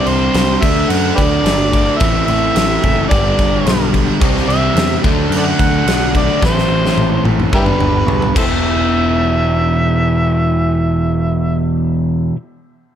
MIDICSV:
0, 0, Header, 1, 6, 480
1, 0, Start_track
1, 0, Key_signature, 1, "minor"
1, 0, Tempo, 552486
1, 1745, Time_signature, 4, 2, 24, 8
1, 11253, End_track
2, 0, Start_track
2, 0, Title_t, "Harmonica"
2, 0, Program_c, 0, 22
2, 66, Note_on_c, 0, 72, 96
2, 540, Note_on_c, 0, 76, 95
2, 553, Note_off_c, 0, 72, 0
2, 780, Note_on_c, 0, 78, 108
2, 793, Note_off_c, 0, 76, 0
2, 995, Note_off_c, 0, 78, 0
2, 1000, Note_on_c, 0, 67, 73
2, 1000, Note_on_c, 0, 71, 73
2, 1000, Note_on_c, 0, 74, 104
2, 1052, Note_off_c, 0, 67, 0
2, 1062, Note_off_c, 0, 71, 0
2, 1715, Note_on_c, 0, 76, 111
2, 1728, Note_off_c, 0, 74, 0
2, 1951, Note_off_c, 0, 76, 0
2, 1956, Note_on_c, 0, 76, 107
2, 2655, Note_off_c, 0, 76, 0
2, 2680, Note_on_c, 0, 74, 87
2, 3377, Note_off_c, 0, 74, 0
2, 3895, Note_on_c, 0, 76, 110
2, 4344, Note_off_c, 0, 76, 0
2, 4667, Note_on_c, 0, 69, 79
2, 4667, Note_on_c, 0, 74, 79
2, 4667, Note_on_c, 0, 78, 113
2, 4721, Note_off_c, 0, 69, 0
2, 4734, Note_off_c, 0, 74, 0
2, 5373, Note_on_c, 0, 74, 91
2, 5386, Note_off_c, 0, 78, 0
2, 5597, Note_off_c, 0, 74, 0
2, 5611, Note_on_c, 0, 72, 93
2, 6281, Note_off_c, 0, 72, 0
2, 6559, Note_on_c, 0, 64, 80
2, 6559, Note_on_c, 0, 67, 80
2, 6559, Note_on_c, 0, 71, 114
2, 6632, Note_off_c, 0, 67, 0
2, 6635, Note_off_c, 0, 64, 0
2, 7236, Note_off_c, 0, 71, 0
2, 7276, Note_on_c, 0, 69, 65
2, 7276, Note_on_c, 0, 72, 65
2, 7276, Note_on_c, 0, 76, 93
2, 7332, Note_off_c, 0, 69, 0
2, 7341, Note_off_c, 0, 72, 0
2, 10091, Note_off_c, 0, 76, 0
2, 11253, End_track
3, 0, Start_track
3, 0, Title_t, "Overdriven electric guitar"
3, 0, Program_c, 1, 29
3, 0, Note_on_c, 1, 48, 88
3, 0, Note_on_c, 1, 55, 93
3, 0, Note_on_c, 1, 60, 92
3, 0, Note_on_c, 1, 62, 101
3, 527, Note_off_c, 1, 48, 0
3, 531, Note_on_c, 1, 50, 93
3, 533, Note_off_c, 1, 55, 0
3, 536, Note_on_c, 1, 54, 96
3, 538, Note_off_c, 1, 60, 0
3, 540, Note_off_c, 1, 62, 0
3, 544, Note_on_c, 1, 57, 90
3, 559, Note_on_c, 1, 62, 95
3, 1483, Note_off_c, 1, 50, 0
3, 1486, Note_off_c, 1, 54, 0
3, 1486, Note_off_c, 1, 62, 0
3, 1490, Note_off_c, 1, 57, 0
3, 1497, Note_on_c, 1, 62, 90
3, 1501, Note_on_c, 1, 57, 88
3, 1509, Note_on_c, 1, 54, 73
3, 1514, Note_on_c, 1, 50, 68
3, 1726, Note_off_c, 1, 62, 0
3, 1729, Note_off_c, 1, 57, 0
3, 1729, Note_on_c, 1, 45, 80
3, 1732, Note_off_c, 1, 54, 0
3, 1735, Note_off_c, 1, 50, 0
3, 1742, Note_on_c, 1, 52, 90
3, 1744, Note_on_c, 1, 57, 92
3, 1751, Note_on_c, 1, 60, 100
3, 1756, Note_on_c, 1, 64, 92
3, 2675, Note_off_c, 1, 45, 0
3, 2678, Note_on_c, 1, 43, 93
3, 2682, Note_off_c, 1, 52, 0
3, 2686, Note_on_c, 1, 50, 96
3, 2688, Note_off_c, 1, 57, 0
3, 2691, Note_on_c, 1, 55, 96
3, 2693, Note_off_c, 1, 60, 0
3, 2695, Note_off_c, 1, 64, 0
3, 2702, Note_on_c, 1, 59, 97
3, 2704, Note_on_c, 1, 62, 104
3, 3636, Note_off_c, 1, 43, 0
3, 3638, Note_off_c, 1, 55, 0
3, 3639, Note_off_c, 1, 50, 0
3, 3647, Note_off_c, 1, 59, 0
3, 3648, Note_off_c, 1, 62, 0
3, 3648, Note_on_c, 1, 48, 86
3, 3649, Note_on_c, 1, 55, 98
3, 3660, Note_on_c, 1, 60, 99
3, 3668, Note_on_c, 1, 62, 106
3, 4361, Note_off_c, 1, 48, 0
3, 4361, Note_off_c, 1, 55, 0
3, 4367, Note_off_c, 1, 60, 0
3, 4370, Note_off_c, 1, 62, 0
3, 4373, Note_on_c, 1, 50, 86
3, 4382, Note_on_c, 1, 54, 90
3, 4396, Note_on_c, 1, 57, 99
3, 4399, Note_on_c, 1, 62, 102
3, 5323, Note_off_c, 1, 50, 0
3, 5327, Note_off_c, 1, 54, 0
3, 5327, Note_off_c, 1, 62, 0
3, 5334, Note_off_c, 1, 57, 0
3, 5338, Note_on_c, 1, 62, 88
3, 5346, Note_on_c, 1, 57, 78
3, 5352, Note_on_c, 1, 54, 76
3, 5357, Note_on_c, 1, 50, 69
3, 5565, Note_off_c, 1, 62, 0
3, 5569, Note_off_c, 1, 57, 0
3, 5572, Note_off_c, 1, 54, 0
3, 5575, Note_off_c, 1, 50, 0
3, 5575, Note_on_c, 1, 45, 87
3, 5581, Note_on_c, 1, 52, 97
3, 5587, Note_on_c, 1, 57, 87
3, 5588, Note_on_c, 1, 60, 97
3, 5596, Note_on_c, 1, 64, 106
3, 6524, Note_off_c, 1, 45, 0
3, 6527, Note_off_c, 1, 52, 0
3, 6529, Note_on_c, 1, 43, 89
3, 6530, Note_off_c, 1, 57, 0
3, 6530, Note_off_c, 1, 60, 0
3, 6534, Note_off_c, 1, 64, 0
3, 6543, Note_on_c, 1, 50, 91
3, 6547, Note_on_c, 1, 55, 93
3, 6549, Note_on_c, 1, 59, 101
3, 6556, Note_on_c, 1, 62, 103
3, 7255, Note_off_c, 1, 43, 0
3, 7255, Note_off_c, 1, 50, 0
3, 7259, Note_on_c, 1, 52, 95
3, 7263, Note_off_c, 1, 59, 0
3, 7264, Note_off_c, 1, 55, 0
3, 7269, Note_off_c, 1, 62, 0
3, 7273, Note_on_c, 1, 59, 94
3, 7277, Note_on_c, 1, 64, 89
3, 7296, Note_on_c, 1, 67, 104
3, 10725, Note_off_c, 1, 52, 0
3, 10733, Note_off_c, 1, 59, 0
3, 10734, Note_off_c, 1, 64, 0
3, 10744, Note_off_c, 1, 67, 0
3, 11253, End_track
4, 0, Start_track
4, 0, Title_t, "Overdriven electric guitar"
4, 0, Program_c, 2, 29
4, 1252, Note_on_c, 2, 50, 71
4, 1261, Note_on_c, 2, 57, 81
4, 1273, Note_on_c, 2, 62, 83
4, 1724, Note_off_c, 2, 50, 0
4, 1728, Note_off_c, 2, 57, 0
4, 1734, Note_off_c, 2, 62, 0
4, 2456, Note_on_c, 2, 57, 94
4, 2463, Note_on_c, 2, 52, 83
4, 2475, Note_on_c, 2, 45, 72
4, 2685, Note_off_c, 2, 57, 0
4, 2689, Note_off_c, 2, 52, 0
4, 2695, Note_off_c, 2, 45, 0
4, 3415, Note_on_c, 2, 55, 88
4, 3422, Note_on_c, 2, 50, 75
4, 3436, Note_on_c, 2, 43, 78
4, 3644, Note_off_c, 2, 55, 0
4, 3648, Note_off_c, 2, 50, 0
4, 3655, Note_off_c, 2, 43, 0
4, 5089, Note_on_c, 2, 50, 77
4, 5106, Note_on_c, 2, 57, 81
4, 5111, Note_on_c, 2, 62, 84
4, 5561, Note_off_c, 2, 50, 0
4, 5569, Note_off_c, 2, 57, 0
4, 5572, Note_off_c, 2, 62, 0
4, 6290, Note_on_c, 2, 57, 85
4, 6300, Note_on_c, 2, 52, 77
4, 6305, Note_on_c, 2, 45, 70
4, 6521, Note_off_c, 2, 57, 0
4, 6526, Note_off_c, 2, 52, 0
4, 6529, Note_off_c, 2, 45, 0
4, 7248, Note_on_c, 2, 40, 100
4, 7270, Note_on_c, 2, 47, 98
4, 10720, Note_off_c, 2, 40, 0
4, 10731, Note_off_c, 2, 47, 0
4, 11253, End_track
5, 0, Start_track
5, 0, Title_t, "Picked electric bass"
5, 0, Program_c, 3, 34
5, 57, Note_on_c, 3, 36, 89
5, 244, Note_off_c, 3, 36, 0
5, 300, Note_on_c, 3, 36, 90
5, 485, Note_off_c, 3, 36, 0
5, 547, Note_on_c, 3, 38, 89
5, 730, Note_off_c, 3, 38, 0
5, 778, Note_on_c, 3, 42, 90
5, 963, Note_off_c, 3, 42, 0
5, 1020, Note_on_c, 3, 38, 83
5, 1205, Note_off_c, 3, 38, 0
5, 1248, Note_on_c, 3, 31, 89
5, 1620, Note_off_c, 3, 31, 0
5, 1744, Note_on_c, 3, 33, 92
5, 1927, Note_off_c, 3, 33, 0
5, 1983, Note_on_c, 3, 33, 96
5, 2166, Note_off_c, 3, 33, 0
5, 2219, Note_on_c, 3, 33, 93
5, 2403, Note_off_c, 3, 33, 0
5, 2465, Note_on_c, 3, 30, 89
5, 2648, Note_off_c, 3, 30, 0
5, 2700, Note_on_c, 3, 31, 91
5, 2884, Note_off_c, 3, 31, 0
5, 2944, Note_on_c, 3, 31, 85
5, 3126, Note_off_c, 3, 31, 0
5, 3176, Note_on_c, 3, 35, 96
5, 3544, Note_off_c, 3, 35, 0
5, 3659, Note_on_c, 3, 36, 97
5, 3843, Note_off_c, 3, 36, 0
5, 3888, Note_on_c, 3, 36, 93
5, 4076, Note_off_c, 3, 36, 0
5, 4122, Note_on_c, 3, 40, 90
5, 4313, Note_off_c, 3, 40, 0
5, 4380, Note_on_c, 3, 38, 95
5, 4564, Note_off_c, 3, 38, 0
5, 4606, Note_on_c, 3, 42, 93
5, 4795, Note_off_c, 3, 42, 0
5, 4860, Note_on_c, 3, 38, 86
5, 5043, Note_off_c, 3, 38, 0
5, 5098, Note_on_c, 3, 35, 95
5, 5465, Note_off_c, 3, 35, 0
5, 5584, Note_on_c, 3, 33, 92
5, 5766, Note_off_c, 3, 33, 0
5, 5810, Note_on_c, 3, 33, 88
5, 5997, Note_off_c, 3, 33, 0
5, 6047, Note_on_c, 3, 33, 93
5, 6235, Note_off_c, 3, 33, 0
5, 6290, Note_on_c, 3, 33, 89
5, 6477, Note_off_c, 3, 33, 0
5, 6539, Note_on_c, 3, 31, 90
5, 6723, Note_off_c, 3, 31, 0
5, 6774, Note_on_c, 3, 31, 82
5, 6960, Note_off_c, 3, 31, 0
5, 7007, Note_on_c, 3, 35, 93
5, 7195, Note_off_c, 3, 35, 0
5, 7262, Note_on_c, 3, 28, 93
5, 10692, Note_off_c, 3, 28, 0
5, 11253, End_track
6, 0, Start_track
6, 0, Title_t, "Drums"
6, 56, Note_on_c, 9, 49, 56
6, 143, Note_off_c, 9, 49, 0
6, 298, Note_on_c, 9, 49, 81
6, 308, Note_on_c, 9, 38, 113
6, 385, Note_off_c, 9, 49, 0
6, 395, Note_off_c, 9, 38, 0
6, 543, Note_on_c, 9, 36, 110
6, 545, Note_on_c, 9, 49, 97
6, 630, Note_off_c, 9, 36, 0
6, 632, Note_off_c, 9, 49, 0
6, 783, Note_on_c, 9, 49, 81
6, 870, Note_off_c, 9, 49, 0
6, 1025, Note_on_c, 9, 36, 87
6, 1026, Note_on_c, 9, 49, 62
6, 1112, Note_off_c, 9, 36, 0
6, 1113, Note_off_c, 9, 49, 0
6, 1266, Note_on_c, 9, 49, 89
6, 1276, Note_on_c, 9, 38, 116
6, 1353, Note_off_c, 9, 49, 0
6, 1362, Note_off_c, 9, 38, 0
6, 1507, Note_on_c, 9, 36, 86
6, 1510, Note_on_c, 9, 49, 65
6, 1593, Note_off_c, 9, 36, 0
6, 1597, Note_off_c, 9, 49, 0
6, 1739, Note_on_c, 9, 49, 86
6, 1745, Note_on_c, 9, 36, 116
6, 1826, Note_off_c, 9, 49, 0
6, 1832, Note_off_c, 9, 36, 0
6, 1981, Note_on_c, 9, 49, 61
6, 2067, Note_off_c, 9, 49, 0
6, 2222, Note_on_c, 9, 49, 87
6, 2231, Note_on_c, 9, 38, 114
6, 2309, Note_off_c, 9, 49, 0
6, 2318, Note_off_c, 9, 38, 0
6, 2462, Note_on_c, 9, 49, 58
6, 2465, Note_on_c, 9, 36, 81
6, 2549, Note_off_c, 9, 49, 0
6, 2552, Note_off_c, 9, 36, 0
6, 2701, Note_on_c, 9, 49, 76
6, 2704, Note_on_c, 9, 36, 115
6, 2788, Note_off_c, 9, 49, 0
6, 2791, Note_off_c, 9, 36, 0
6, 2944, Note_on_c, 9, 36, 88
6, 2945, Note_on_c, 9, 49, 57
6, 3031, Note_off_c, 9, 36, 0
6, 3032, Note_off_c, 9, 49, 0
6, 3184, Note_on_c, 9, 49, 81
6, 3194, Note_on_c, 9, 38, 113
6, 3271, Note_off_c, 9, 49, 0
6, 3281, Note_off_c, 9, 38, 0
6, 3423, Note_on_c, 9, 36, 80
6, 3423, Note_on_c, 9, 49, 62
6, 3510, Note_off_c, 9, 36, 0
6, 3510, Note_off_c, 9, 49, 0
6, 3661, Note_on_c, 9, 49, 79
6, 3662, Note_on_c, 9, 36, 118
6, 3748, Note_off_c, 9, 49, 0
6, 3749, Note_off_c, 9, 36, 0
6, 3796, Note_on_c, 9, 38, 33
6, 3883, Note_off_c, 9, 38, 0
6, 3911, Note_on_c, 9, 49, 57
6, 3998, Note_off_c, 9, 49, 0
6, 4140, Note_on_c, 9, 49, 83
6, 4150, Note_on_c, 9, 38, 124
6, 4227, Note_off_c, 9, 49, 0
6, 4237, Note_off_c, 9, 38, 0
6, 4381, Note_on_c, 9, 36, 107
6, 4383, Note_on_c, 9, 49, 59
6, 4468, Note_off_c, 9, 36, 0
6, 4470, Note_off_c, 9, 49, 0
6, 4622, Note_on_c, 9, 49, 80
6, 4709, Note_off_c, 9, 49, 0
6, 4859, Note_on_c, 9, 49, 62
6, 4860, Note_on_c, 9, 36, 93
6, 4945, Note_off_c, 9, 49, 0
6, 4947, Note_off_c, 9, 36, 0
6, 5104, Note_on_c, 9, 49, 90
6, 5114, Note_on_c, 9, 38, 108
6, 5191, Note_off_c, 9, 49, 0
6, 5201, Note_off_c, 9, 38, 0
6, 5341, Note_on_c, 9, 36, 81
6, 5342, Note_on_c, 9, 49, 68
6, 5427, Note_off_c, 9, 36, 0
6, 5429, Note_off_c, 9, 49, 0
6, 5581, Note_on_c, 9, 36, 117
6, 5591, Note_on_c, 9, 38, 68
6, 5668, Note_off_c, 9, 36, 0
6, 5678, Note_off_c, 9, 38, 0
6, 5717, Note_on_c, 9, 38, 55
6, 5803, Note_off_c, 9, 38, 0
6, 5956, Note_on_c, 9, 38, 66
6, 6043, Note_off_c, 9, 38, 0
6, 6060, Note_on_c, 9, 48, 78
6, 6147, Note_off_c, 9, 48, 0
6, 6301, Note_on_c, 9, 48, 75
6, 6388, Note_off_c, 9, 48, 0
6, 6426, Note_on_c, 9, 47, 69
6, 6513, Note_off_c, 9, 47, 0
6, 6541, Note_on_c, 9, 36, 113
6, 6628, Note_off_c, 9, 36, 0
6, 6657, Note_on_c, 9, 47, 76
6, 6744, Note_off_c, 9, 47, 0
6, 6781, Note_on_c, 9, 45, 93
6, 6868, Note_off_c, 9, 45, 0
6, 7022, Note_on_c, 9, 45, 100
6, 7109, Note_off_c, 9, 45, 0
6, 7144, Note_on_c, 9, 43, 89
6, 7231, Note_off_c, 9, 43, 0
6, 7263, Note_on_c, 9, 36, 111
6, 7267, Note_on_c, 9, 57, 92
6, 7350, Note_off_c, 9, 36, 0
6, 7354, Note_off_c, 9, 57, 0
6, 11253, End_track
0, 0, End_of_file